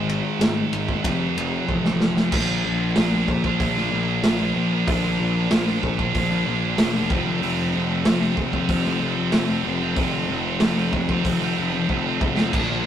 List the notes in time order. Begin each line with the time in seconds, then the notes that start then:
Already playing: G#1 G#2 D#3 G#3
0.09 ride
0.39 G#1, snare, ride
0.72 G#1, ride
0.89 kick
1.02 F1 F2 C3 F3, kick, ride
1.37 F1, ride
1.69 A1, kick
1.85 snare
2.01 snare
2.17 snare
2.31 A#1 A#2 F3 A#3 D4 F4, kick, crash
2.47 A#3 D4 F4
2.64 A#1 A#2 F3 A#3 D4
2.95 A#1 A#2 F3 A#3 D4 F4, snare, open hi-hat
3.11 A#3 D4 F4
3.28 A#1 A#2 F3 A#3 D4, muted distorted electric guitar stroke, kick
3.44 A#3 D4 F4, muted distorted electric guitar stroke, kick
3.60 A#1, kick, open hi-hat
3.76 F3 A#3 D4 F4, snare
3.91 A#1 A#2 F3 A#3 D4 F4
4.08 muted distorted electric guitar stroke
4.23 A#1 A#2 F3 A#3 D4 F4, snare, open hi-hat
4.40 A#3 D4 F4
4.55 A#1 A#2 F3 A#3 D4
4.59 F4
4.73 F3 A#3 D4 F4
4.87 A#1 A#2 F3 A#3 D4 F4, kick, open hi-hat
5.03 A#3 D4 F4
5.19 A#1 A#2 F3 A#3 D4
5.50 A#1 A#2 F3 A#3 D4 F4, snare, open hi-hat
5.67 A#3 D4 F4, snare
5.82 A#1 A#2 F3 A#3 D4, muted distorted electric guitar stroke, kick
5.97 A#3 D4 F4, muted distorted electric guitar stroke, kick
6.14 A#1, kick, open hi-hat
6.30 F3 A#3 D4 F4
6.45 A#1 A#2 F3 A#3 D4 F4
6.63 muted distorted electric guitar stroke
6.77 E1 A#2 F3 A#3 D4 F4, snare, open hi-hat
6.94 A#3 D4 F4
7.10 F1 F2 C3 F3 A3 C4 F4, kick
7.26 F3 A3 C4 F4
7.41 F1 F2 C3 F3 A3 C4 F4, open hi-hat
7.59 F3 A3 C4 F4
7.73 F1 C3 F3 A3 C4
8.05 F1 F2 C3 F3 A3 C4 F4, snare, open hi-hat
8.21 F3 A3 C4 F4, snare
8.36 F1 C3 F3 A3 C4, muted distorted electric guitar stroke, kick
8.52 F3 A3 C4 F4, muted distorted electric guitar stroke, kick
8.69 F1, kick, open hi-hat
8.84 F3 A3 C4 F4, snare
9.01 F1 C3 F3 A3 C4 F4
9.17 muted distorted electric guitar stroke
9.32 F1 F2 C3 F3 A3 C4, snare, open hi-hat
9.36 F4
9.48 F3 A3 C4 F4
9.64 F1 C3 F3 A3 C4 F4
9.81 F3 A3 C4 F4
9.96 F1 F2 C3 F3 A3 C4 F4, kick, open hi-hat
10.12 F3 A3 C4 F4
10.28 F1 C3 F3 A3 C4
10.60 F1 F2 C3 F3 A3 C4 F4, snare, open hi-hat
10.77 F3 A3 C4 F4, snare
10.92 F1 C3 F3 A3 C4, muted distorted electric guitar stroke, kick
11.08 F3 A3 C4 F4, muted distorted electric guitar stroke, kick
11.25 F1, kick, open hi-hat
11.41 F3 A3 C4 F4
11.56 F1 C3 F3 A3 C4 F4
11.73 muted distorted electric guitar stroke
11.89 F1 F2 C3 F3 A3 C4 F4, kick
12.05 F3 A3 C4 F4
12.20 F1 C3 F3 A3 C4 F4, kick
12.37 F3 A3 C4 F4, snare
12.53 A#1 A#2 F3 A#3 D4 F4, kick, crash
12.69 A#3 D4 F4